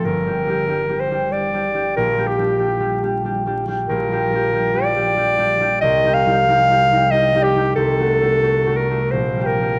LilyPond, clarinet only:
\new Staff \with { instrumentName = "Clarinet" } { \time 3/4 \key g \dorian \tempo 4 = 93 bes'4. c''8 d''4 | bes'8 g'4. r4 | \key g \minor bes'4. d''4. | ees''8 f''4. ees''8 g'8 |
a'4. bes'8 c''8 bes'8 | }